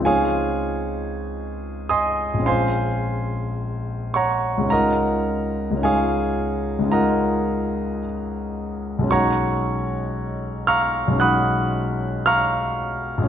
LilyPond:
\new Staff \with { instrumentName = "Grand piano" } { \time 4/4 \key des \major \tempo 4 = 54 << { <aes' des'' f'' aes''>4. <ees'' aes'' c''' ees'''>8 <c'' f'' aes'' c'''>4. <des'' ges'' bes'' des'''>8 | <bes' ees'' ges'' bes''>4 <aes' des'' f'' aes''>4 <bes' ees'' ges'' bes''>4 r4 | <des'' ges'' bes'' des'''>4. <f'' bes'' des''' f'''>8 <ges'' ces''' ees''' ges'''>4 <f'' bes'' des''' f'''>4 | } \\ { <des, aes c' ees' f'>2 <bes,, aes c' des' f'>2 | <des, aes des' ees' f'>4 <des, aes des' ees' f'>4 <des, aes des' ees' f'>2 | <ces, aes des' ees' ges'>2 <ces, aes des' ees' ges'>2 | } >> }